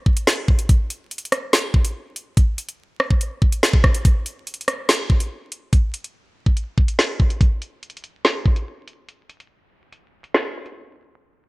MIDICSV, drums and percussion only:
0, 0, Header, 1, 2, 480
1, 0, Start_track
1, 0, Tempo, 419580
1, 793, Time_signature, 4, 2, 24, 8
1, 13143, End_track
2, 0, Start_track
2, 0, Title_t, "Drums"
2, 71, Note_on_c, 9, 36, 100
2, 185, Note_off_c, 9, 36, 0
2, 191, Note_on_c, 9, 42, 90
2, 305, Note_off_c, 9, 42, 0
2, 312, Note_on_c, 9, 38, 116
2, 426, Note_off_c, 9, 38, 0
2, 552, Note_on_c, 9, 36, 103
2, 666, Note_off_c, 9, 36, 0
2, 671, Note_on_c, 9, 42, 80
2, 786, Note_off_c, 9, 42, 0
2, 791, Note_on_c, 9, 36, 125
2, 791, Note_on_c, 9, 42, 85
2, 905, Note_off_c, 9, 42, 0
2, 906, Note_off_c, 9, 36, 0
2, 1032, Note_on_c, 9, 42, 94
2, 1146, Note_off_c, 9, 42, 0
2, 1272, Note_on_c, 9, 42, 72
2, 1352, Note_off_c, 9, 42, 0
2, 1352, Note_on_c, 9, 42, 72
2, 1432, Note_off_c, 9, 42, 0
2, 1432, Note_on_c, 9, 42, 73
2, 1512, Note_off_c, 9, 42, 0
2, 1512, Note_on_c, 9, 37, 104
2, 1512, Note_on_c, 9, 42, 81
2, 1626, Note_off_c, 9, 37, 0
2, 1627, Note_off_c, 9, 42, 0
2, 1752, Note_on_c, 9, 42, 85
2, 1753, Note_on_c, 9, 38, 122
2, 1867, Note_off_c, 9, 38, 0
2, 1867, Note_off_c, 9, 42, 0
2, 1991, Note_on_c, 9, 36, 99
2, 2106, Note_off_c, 9, 36, 0
2, 2112, Note_on_c, 9, 42, 94
2, 2226, Note_off_c, 9, 42, 0
2, 2472, Note_on_c, 9, 42, 80
2, 2586, Note_off_c, 9, 42, 0
2, 2712, Note_on_c, 9, 36, 125
2, 2712, Note_on_c, 9, 42, 87
2, 2826, Note_off_c, 9, 36, 0
2, 2826, Note_off_c, 9, 42, 0
2, 2952, Note_on_c, 9, 42, 98
2, 3066, Note_off_c, 9, 42, 0
2, 3072, Note_on_c, 9, 42, 75
2, 3186, Note_off_c, 9, 42, 0
2, 3431, Note_on_c, 9, 37, 103
2, 3546, Note_off_c, 9, 37, 0
2, 3552, Note_on_c, 9, 36, 91
2, 3667, Note_off_c, 9, 36, 0
2, 3672, Note_on_c, 9, 42, 82
2, 3786, Note_off_c, 9, 42, 0
2, 3911, Note_on_c, 9, 36, 99
2, 4026, Note_off_c, 9, 36, 0
2, 4032, Note_on_c, 9, 42, 88
2, 4147, Note_off_c, 9, 42, 0
2, 4154, Note_on_c, 9, 38, 113
2, 4268, Note_off_c, 9, 38, 0
2, 4272, Note_on_c, 9, 36, 102
2, 4387, Note_off_c, 9, 36, 0
2, 4392, Note_on_c, 9, 37, 105
2, 4393, Note_on_c, 9, 36, 107
2, 4506, Note_off_c, 9, 37, 0
2, 4507, Note_off_c, 9, 36, 0
2, 4513, Note_on_c, 9, 42, 81
2, 4627, Note_off_c, 9, 42, 0
2, 4632, Note_on_c, 9, 36, 123
2, 4632, Note_on_c, 9, 42, 78
2, 4747, Note_off_c, 9, 36, 0
2, 4747, Note_off_c, 9, 42, 0
2, 4872, Note_on_c, 9, 42, 92
2, 4987, Note_off_c, 9, 42, 0
2, 5113, Note_on_c, 9, 42, 71
2, 5192, Note_off_c, 9, 42, 0
2, 5192, Note_on_c, 9, 42, 67
2, 5272, Note_off_c, 9, 42, 0
2, 5272, Note_on_c, 9, 42, 69
2, 5352, Note_on_c, 9, 37, 97
2, 5353, Note_off_c, 9, 42, 0
2, 5353, Note_on_c, 9, 42, 78
2, 5466, Note_off_c, 9, 37, 0
2, 5467, Note_off_c, 9, 42, 0
2, 5593, Note_on_c, 9, 38, 123
2, 5593, Note_on_c, 9, 42, 78
2, 5707, Note_off_c, 9, 42, 0
2, 5708, Note_off_c, 9, 38, 0
2, 5832, Note_on_c, 9, 36, 98
2, 5946, Note_off_c, 9, 36, 0
2, 5953, Note_on_c, 9, 42, 88
2, 6067, Note_off_c, 9, 42, 0
2, 6313, Note_on_c, 9, 42, 76
2, 6428, Note_off_c, 9, 42, 0
2, 6552, Note_on_c, 9, 42, 81
2, 6553, Note_on_c, 9, 36, 117
2, 6667, Note_off_c, 9, 36, 0
2, 6667, Note_off_c, 9, 42, 0
2, 6793, Note_on_c, 9, 42, 89
2, 6907, Note_off_c, 9, 42, 0
2, 6913, Note_on_c, 9, 42, 71
2, 7027, Note_off_c, 9, 42, 0
2, 7393, Note_on_c, 9, 36, 88
2, 7508, Note_off_c, 9, 36, 0
2, 7513, Note_on_c, 9, 42, 77
2, 7628, Note_off_c, 9, 42, 0
2, 7752, Note_on_c, 9, 36, 96
2, 7867, Note_off_c, 9, 36, 0
2, 7874, Note_on_c, 9, 42, 87
2, 7988, Note_off_c, 9, 42, 0
2, 7995, Note_on_c, 9, 38, 106
2, 8109, Note_off_c, 9, 38, 0
2, 8234, Note_on_c, 9, 36, 99
2, 8348, Note_off_c, 9, 36, 0
2, 8355, Note_on_c, 9, 42, 76
2, 8469, Note_off_c, 9, 42, 0
2, 8474, Note_on_c, 9, 36, 114
2, 8475, Note_on_c, 9, 42, 82
2, 8588, Note_off_c, 9, 36, 0
2, 8589, Note_off_c, 9, 42, 0
2, 8715, Note_on_c, 9, 42, 92
2, 8829, Note_off_c, 9, 42, 0
2, 8955, Note_on_c, 9, 42, 68
2, 9035, Note_off_c, 9, 42, 0
2, 9035, Note_on_c, 9, 42, 70
2, 9115, Note_off_c, 9, 42, 0
2, 9115, Note_on_c, 9, 42, 71
2, 9195, Note_off_c, 9, 42, 0
2, 9195, Note_on_c, 9, 42, 78
2, 9309, Note_off_c, 9, 42, 0
2, 9434, Note_on_c, 9, 42, 81
2, 9435, Note_on_c, 9, 38, 120
2, 9549, Note_off_c, 9, 38, 0
2, 9549, Note_off_c, 9, 42, 0
2, 9673, Note_on_c, 9, 36, 95
2, 9787, Note_off_c, 9, 36, 0
2, 9794, Note_on_c, 9, 42, 87
2, 9909, Note_off_c, 9, 42, 0
2, 10154, Note_on_c, 9, 42, 77
2, 10269, Note_off_c, 9, 42, 0
2, 10394, Note_on_c, 9, 42, 78
2, 10509, Note_off_c, 9, 42, 0
2, 10634, Note_on_c, 9, 42, 88
2, 10748, Note_off_c, 9, 42, 0
2, 10754, Note_on_c, 9, 42, 71
2, 10869, Note_off_c, 9, 42, 0
2, 11353, Note_on_c, 9, 42, 76
2, 11468, Note_off_c, 9, 42, 0
2, 11714, Note_on_c, 9, 42, 85
2, 11828, Note_off_c, 9, 42, 0
2, 11834, Note_on_c, 9, 38, 102
2, 11949, Note_off_c, 9, 38, 0
2, 12193, Note_on_c, 9, 42, 74
2, 12307, Note_off_c, 9, 42, 0
2, 13143, End_track
0, 0, End_of_file